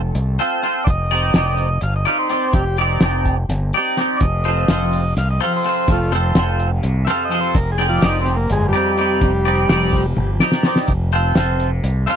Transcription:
Already playing: F1
0.15 C2, closed hi-hat
0.39 C4 F4 A4 C5, closed hi-hat
0.62 C4 F4 A4 C5, closed hi-hat
0.84 F1 D5, kick, closed hi-hat
0.90 D#5
1.11 C4 D#4 G4 D5, closed hi-hat
1.34 F1 C4 D#4 G4 D5, snare, closed hi-hat
1.57 closed hi-hat
1.81 G1 F5, closed hi-hat
1.96 D#5
2.05 C4 D#4 G4 D5 F5, closed hi-hat
2.19 C5
2.29 C4 D#4 G4 D5, closed hi-hat
2.53 F1 G4, kick, closed hi-hat
2.77 C4 D#4 G4 D5, closed hi-hat
3.01 F1 C4 D#4 G4 D5, snare, closed hi-hat
3.25 kick, closed hi-hat
3.49 G1, snare, closed hi-hat
3.73 C4 D#4 G4 D5, closed hi-hat
3.97 C4 D#4 G4 D5, snare, closed hi-hat
4.17 F1 C3 D5, kick, closed hi-hat
4.22 D#5
4.44 C4 F4 A4 C5, closed hi-hat
4.68 F1 C4 F4 A4 C5, snare, closed hi-hat
4.82 F3
4.93 closed hi-hat
5.17 C2 F5, snare, closed hi-hat
5.31 D#5
5.40 C4 F4 A4 C5 F5, closed hi-hat
5.44 F3
5.57 C5
5.64 C4 F4 A4 C5, closed hi-hat
5.88 F1 A3, kick, closed hi-hat
5.92 F4
6.07 F2
6.12 C4 F4 A4 C5, snare, closed hi-hat
6.35 F1 C4 F4 A4 C5, snare, closed hi-hat
6.60 closed hi-hat
6.67 C3
6.83 C2, closed hi-hat
7.05 C4 F4 A4 C5 E5, snare, closed hi-hat
7.09 F5
7.25 F3 D#5
7.30 C4 F4 A4 C5, closed hi-hat
7.41 C5
7.55 F1 A#4, kick, closed hi-hat
7.72 G#4
7.78 C4 D#4 G4 D5, snare, closed hi-hat
7.89 F3 F4
8.02 F1 C4 D#4 G4 D5, snare, closed hi-hat
8.21 C4
8.26 snare, closed hi-hat
8.36 A#3
8.49 G1 F2 G#3, closed hi-hat
8.69 G3
8.73 C4 D#4 G4 D5, closed hi-hat
8.98 C4 D#4 G4 D5, closed hi-hat
9.10 C3
9.21 F1, kick, closed hi-hat
9.45 C4 D#4 G4 D5, closed hi-hat
9.69 F1 F3 C4 D#4 G4 D5, snare, closed hi-hat
9.93 kick, closed hi-hat
10.17 G1, high tom
10.34 F3
10.40 C4 D#4 G4 D5, snare
10.52 snare
10.63 C4 D#4 G4 D5, snare
10.76 snare
10.88 F1, kick, closed hi-hat
10.95 F2
11.12 C4 F4 A4 C5, closed hi-hat
11.35 F1 C4 F4 A4 C5, snare, closed hi-hat
11.54 C3
11.60 closed hi-hat
11.84 C2, closed hi-hat
12.06 C4 F4 A4 C5 E5, closed hi-hat
12.10 F5

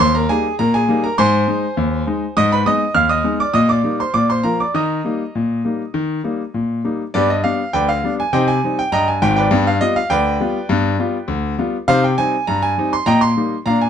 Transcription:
0.00 D#2 C5 C6
0.15 A#4 A#5
0.29 G3 A#3 D#4 G#4 G#5
0.59 A#2 A#4 A#5
0.74 G#4 G#5
0.88 G3 A#3 D#4
1.04 A#4 A#5
1.18 G#2 C5 G#5 C6
1.48 G#3 D#4
1.77 D#2
2.07 G#3 D#4
2.37 G#2 D#5 D#6
2.52 B4 B5
2.66 G#3 B3 D#4 D#5 D#6
2.95 D#2 F5 F6
3.09 D#5 D#6
3.24 G#3 B3 D#4
3.40 D5 D6
3.54 A#2 D#5 D#6
3.69 D5 D6
3.84 G3 A#3 D#4
4.00 C5 C6
4.14 A#2 D5 D6
4.30 C5 C6
4.43 F3 A#3 F4 A#4 A#5
4.60 D5 D6
4.74 D#3 D#5 A#5 D#6
5.05 G3 A#3 D#4
5.35 A#2
5.65 G3 A#3 D#4
5.94 D#3
6.24 G3 A#3 D#4
6.54 A#2
6.84 G3 A#3 D#4
7.14 G2 B3 G4 B4 D5
7.30 D#5
7.44 G3 B3 D4 F5
7.73 D2 B4 D5 G5
7.89 F5
8.04 G3 B3 D4
8.20 G#5
8.33 C3 D#4 C5 D#5 G5
8.48 G#5
8.64 G3 C4 D#4
8.79 G5
8.92 G2 D#5 G5 A#5
9.08 G#5
9.22 G#1 G#2 G5
9.36 B4 D5 G5
9.51 G2 B3
9.67 F5
9.81 G3 B3 F4 D#5
9.96 F5
10.10 D2 B4 D5 G5
10.40 G3 B3 F4
10.69 G2 B3
10.99 G3 B3 F4
11.28 D2
11.59 G3 B3 F4
11.88 C3 D#4 C5 F5
12.04 G5
12.18 G3 C4 D#4 G#5
12.47 G2 A#5
12.62 G#5
12.78 G3 C4 D#4
12.93 C6
13.06 A#2 D#5 G5 A#5
13.21 C6
13.37 G3 A#3 D#4
13.66 A#2 D4 D5 F5 A#5
13.81 G#5

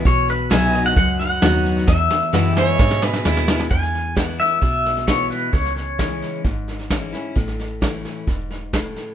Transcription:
0.05 B1 B2 C#5, kick, snare
0.28 B4, snare
0.50 C2 F#3 B3 D#4 F#4 G#4 B4 E5 G#5, snare, hi-hat pedal
0.73 F#4 D#5, snare
0.85 F#5, snare
0.96 C#2 F#2 F#5, kick, snare
1.19 F#5, snare
1.42 D#2 F#3 B3 D#4 F#4, snare, hi-hat pedal
1.65 snare
1.77 snare
1.87 E2 E5, kick, snare
2.10 E2, snare
2.33 F#2 E3 G#3 B3 E4 F#4 B4 E5, snare, hi-hat pedal
2.57 G#4 C#5, snare
2.74 D#5
2.79 G#2 B2, kick, snare
2.91 snare
3.02 B4, snare
3.13 snare
3.25 D#2 G#3 B3 E4, snare, hi-hat pedal
3.37 snare
3.48 snare
3.59 snare
3.70 E2 G#5, kick, snare
3.82 snare
3.94 snare
4.15 E3 G#3 B3 E4, kick, snare, hi-hat pedal
4.24 F#5
4.39 E5, snare
4.62 B1 B2 E5, kick, snare
4.85 snare
4.97 snare
5.07 E3 G#3 B3 E4 C#5, kick, snare, hi-hat pedal
5.30 B4, snare
5.53 C#2 C#3 C#5, kick, snare
5.65 snare
5.76 snare
5.98 E3 G#3 C#4 E4, kick, snare, hi-hat pedal
6.22 snare
6.44 G#1 G#2, kick, snare
6.68 snare
6.79 snare
6.90 E3 G#3 C#4 E4, kick, snare, hi-hat pedal
7.12 C#4 E4, snare
7.35 A1 A2, kick, snare
7.48 snare
7.59 snare
7.81 E3 A3 C#4 E4, kick, snare, hi-hat pedal
8.05 snare
8.27 E1 G#2, kick, snare
8.50 snare
8.73 A2, kick, snare, hi-hat pedal
8.96 snare

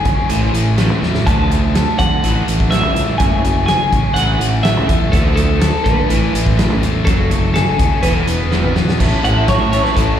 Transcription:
Already playing: F#3 A3 G#4 G#5
0.05 G#1 F#2 C#3 C#4, kick, closed hi-hat
0.28 A1 A2 E3 A3, closed hi-hat
0.54 A1 A2 E3 A3, closed hi-hat
0.77 A2 E3 A3, snare, closed hi-hat
0.90 C#2
1.02 E2 A2 E3 A3, snare
1.15 snare
1.26 D2 D3 F3 A3 D4 A5, kick, closed hi-hat
1.50 D3 A3, closed hi-hat
1.75 D3 A3 A4, snare, closed hi-hat
1.99 F2 D3 A3 D4 F#5, kick, closed hi-hat
2.22 A1 A2 E3 A3, closed hi-hat
2.47 A1 A2 E3 A3, closed hi-hat
2.60 kick
2.70 A2 E3 A3 E5, snare, closed hi-hat
2.83 C#2
2.95 C#2 A2 E3 A3, closed hi-hat
3.18 F#1 F#2 C#3 F#3 G#5, kick, closed hi-hat
3.44 F#2 C#3 A3, closed hi-hat
3.66 F#2 C#3 G#4 G#5, snare, closed hi-hat
3.91 A1 F#2 C#3 C#4, kick, closed hi-hat
4.14 A1 A2 E3 A3 F#5, closed hi-hat
4.39 A1 A2 E3 A3, closed hi-hat
4.63 A2 E3 A3 E5, snare, closed hi-hat
4.77 C#2
4.87 E2 A2 E3 A3, kick, closed hi-hat
5.12 D2 D3 F3 A3 D4 A4, kick, closed hi-hat
5.36 D3 A3 A4, closed hi-hat
5.60 D3 A3 A4, snare, closed hi-hat
5.84 A#1 D3 A3 D4 B4, kick, closed hi-hat
6.09 A1 A2 E3 A3, closed hi-hat
6.33 A1 A2 E3 A3, closed hi-hat
6.46 kick
6.57 A2 E3 A3, snare, closed hi-hat
6.70 C#2 A4
6.81 E2 A2 E3 A3, closed hi-hat
7.05 F#1 F#2 C#3 F#3 A4, kick, closed hi-hat
7.30 F#2 C#3 A3, closed hi-hat
7.54 F#2 C#3 G#4 A4, snare, closed hi-hat
7.78 D#2 F#2 C#3 C#4, kick, closed hi-hat
8.03 E1 E2 B2 E3 B4, closed hi-hat
8.27 E1 E2 B2 B3, closed hi-hat
8.51 E2 B2 E3, snare
8.64 G#1
8.75 E2 B2 B3, snare
8.89 snare
8.99 A1 A2 E3 A3 C#4 E4 A4, kick, crash
9.23 A2 E3 A3 C#4 E4 A4 F#5, closed hi-hat
9.37 E5
9.48 A2 E3 A3 C#4 E4 A4 C#5, kick, snare, closed hi-hat
9.60 A2 E5
9.72 A2 E3 A3 C#4 E4 A4 C#5, closed hi-hat
9.83 B4, snare
9.96 A1 A2 E3 A3 C#4 E4 A4, kick, closed hi-hat

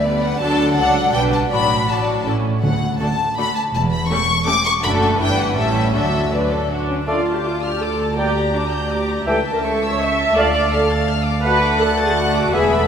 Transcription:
Already playing: D2 D3 D5
0.04 G3 B3 B4 D5
0.22 F#5
0.40 D2 D3 F#3 D4 A4 D5 A5
0.76 C#2 C#3 F#3 D4 A4 D5 F#5
1.13 B1 B2 G3 D4 B4 D5 G5
1.33 A5
1.51 A1 A2 F#3 D4 F#4 D5 B5
1.88 F#3 D4 F#4 D5 A5
2.25 A1 A2 A3 C#4 E4 A4
2.63 D2 D3 F#5
3.00 A3 D4 F#4 A4 A5
3.38 A3 D4 F#4 A4 B5
3.55 A5
3.73 E1 E2 A5
3.92 B5
4.10 A3 C#4 G4 A4 C#6
4.46 A3 C#4 G4 A4 D6
4.65 C#6
4.82 F#1 F#2 A3 D4 F#4 A4 B5
5.02 A5
5.18 G1 G2 E3 D4 E4 B4 G5
5.39 F#5
5.56 A1 A2 G3 C#4 E4 A4 E5
5.94 D2 D3 F#3 D4 F#4 A4 E5
6.31 F#3 D4 B4 D5
6.51 A4
6.70 D4 F#4
6.90 C#4
7.07 D2 A3 D4 F4 A4 D5 F5 A5
7.26 A5
7.33 G4
7.44 F4 D6
7.63 F6
7.69 G4
7.81 A4 D6
8.01 A5
8.17 G3 A#3 G4 D5 G5 A#5
8.38 A#5
8.54 D4 D6
8.72 G6
8.90 G4 D6
9.10 A#5
9.27 C#2 E3 A3 G4 A4 E5 G5 A5
9.46 A5
9.52 A#4
9.64 A4 C#6
9.83 E6
9.89 C#5
10.01 E5 C#6
10.19 A5
10.36 D2 A3 F4 D5 F5 A5
10.55 D6
10.72 A4 F6
10.91 A6
11.09 F6
11.26 D6
11.44 A3 F#4 B4 D5 F#5 A5
11.63 D6
11.80 A4 F#6
11.98 A6
12.05 G#4
12.17 F#4 F#6
12.36 D6
12.53 E1 E2 B3 E4 G#4 E5 G#5 B5
12.71 B5
12.78 A4

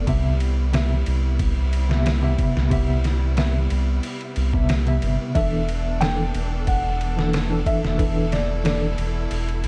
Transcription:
Already playing: B3
0.07 C2 C3 G3 B3 E4 E5, kick, ride
0.40 ride
0.73 C3 B3 E5, snare, ride
1.06 C2, ride
1.39 kick, ride
1.73 ride
1.89 C3 B3 E5, snare
2.06 snare, ride
2.22 C3 B3 E5
2.39 kick, ride
2.57 C2, snare
2.70 C3 B3 E5, kick, ride
3.04 snare, ride
3.37 C3 B3 E5, snare, ride
3.70 C2, ride
4.03 ride
4.21 ride
4.36 C2, ride
4.53 C3 B3 E5, kick
4.69 snare, ride
4.86 C3 B3 E5, ride
5.02 G1, ride
5.35 E1 E3 D4 A4 E5, kick, ride
5.69 ride
6.01 E3 D4 A4 G5, snare, ride
6.34 E1, ride
6.67 F#5, kick, ride
7.01 ride
7.16 E3 D4 A4, snare
7.33 snare, ride
7.50 E3 D4 A4
7.66 E5, kick, ride
7.84 E1, snare
7.98 E3 D4 E4 A4, kick, ride
8.32 D5, snare, ride
8.64 E3 D4 A4 D5, snare, ride
8.98 E1, ride
9.31 E1, ride
9.49 ride
9.64 E2, ride

